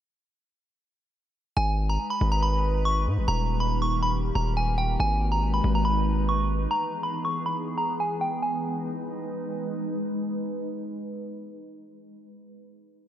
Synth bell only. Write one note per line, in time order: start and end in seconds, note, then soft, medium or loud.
1.57 1.87 G#5 loud
1.89 2.07 A#5 medium
2.10 2.28 B5 medium
2.32 2.40 A#5 medium
2.43 2.83 B5 medium
2.85 3.03 C#6 medium
3.28 3.58 A#5 loud
3.60 3.78 B5 medium
3.82 3.99 C#6 medium
4.03 4.12 B5 medium
4.35 4.53 A#5 medium
4.57 4.74 G#5 medium
4.78 4.95 G5 medium
5.00 5.30 G#5 loud
5.32 5.49 A#5 medium
5.54 5.71 B5 medium
5.75 5.84 A#5 medium
5.85 6.25 B5 medium
6.29 6.46 C#6 medium
6.71 7.01 A#5 loud
7.03 7.21 B5 medium
7.25 7.42 C#6 medium
7.46 7.55 B5 medium
7.78 7.95 A#5 medium
8.00 8.17 G#5 medium
8.21 8.38 G5 medium
8.42 9.67 G#5 medium